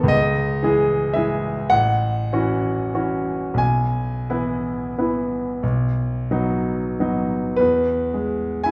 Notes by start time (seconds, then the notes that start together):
Already playing: D#3 B3 A4 B5 C#6
0.03 C#2
0.08 D#5
0.63 E3 G#3 G#4
1.13 E3 G#3 G#4 E5
1.70 A1 F#5
2.33 E3 C#4 F#4
2.94 E3 C#4 F#4
3.54 B1 G#5
4.30 E3 B3 E4
4.98 E3 B3 E4
5.63 B1
6.31 F#3 B3 D#4
7.00 F#3 B3 D#4
7.56 E2 B4
8.14 G#3
8.64 E4 G#5